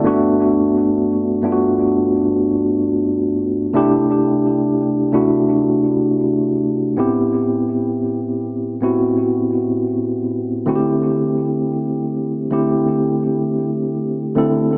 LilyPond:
\new Staff \with { instrumentName = "Tine electric piano" } { \time 4/4 \key g \major \tempo 4 = 65 <g, a b d' fis'>4. <g, a b d' f' fis'>2 r8 | <c a d' e' g'>4. <c a d' e' fis'>2 <a, b c' e' g'>8~ | <a, b c' e' g'>4. <a, b c' e' fis'>2 <d a c' e' fis' g'>8~ | <d a c' e' fis' g'>4. <d a c' e' g'>2 <d a c' e' a'>8 | }